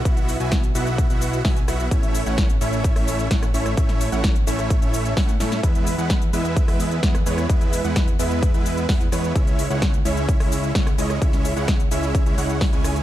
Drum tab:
HH |xxoxxxoxxxoxoxox|xxoxxxoxxooxxxox|xxoxxxoxxxoxoxox|xxoxxxoxxooxxxox|
SH |xxxxxxxxxxxxxxxx|xxxxxxxxxxxxxxxx|xxxxxxxxxxxxxxxx|xxxxxxxxxxxxxxxx|
SD |----o-------o-r-|----o----r--or-r|-o--o--r----o-oo|----o----r--or-r|
BD |o---o---o---o---|o---o---o---o---|o---o---o---o---|o---o---o---o---|

HH |xxoxxxoxxxoxoxo-|xxoxxxoxxooxxxo-|xxoxxxoxxxoxoxox|
SH |xxxxxxxxxxxxxxxx|xxxxxxxxxxxxxxxx|xxxxxxxxxxxxxxxx|
SD |----o-------o-r-|----o----r--or-r|-o--o-------o-r-|
BD |o---o---o---o---|o---o---o---o---|o---o---o---o---|